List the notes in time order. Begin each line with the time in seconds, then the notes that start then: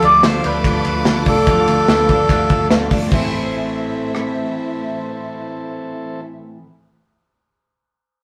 Already playing: F3 A3 D4 F4 A4 D5 F5 D6
0.02 D2 A3 D4 F4 D5, ride
0.22 D2 D3 A3 D4 F4 A4 C5, snare, ride
0.44 D2 A3 D4 F4 B4, ride
0.64 D2 D3 A3 D4 F4 A4, kick, ride
0.85 D2 A3 D4 F4 A4, ride
1.05 D2 D3 A3 D4 F4 A4, snare, ride
1.26 C2 A3 D4 F4 A4, kick, open hi-hat, ride
1.47 D2 D3 F3 A3 D4 F4 A4, kick, hi-hat pedal, ride
1.67 D2 A3 D4 F4, ride
1.87 D2 D3 A3 D4 F4 A4 B4, snare, ride
2.09 D2 A3 D4 F4, kick, ride
2.29 D2 D3 A3 D4 F4 A4, kick, ride
2.50 D2 A3 D4 F4 A4, kick, ride
2.70 D2 D3 A3 D4 F4 A4, snare, ride
2.91 G1 A3 D4 F4, kick, open hi-hat, ride
3.07 A2 C4
3.12 A1 A2 E3 A3 C4 E4 A4 C5 E5, kick, crash
3.16 A3 C4 A4
3.24 E4
4.15 cross-stick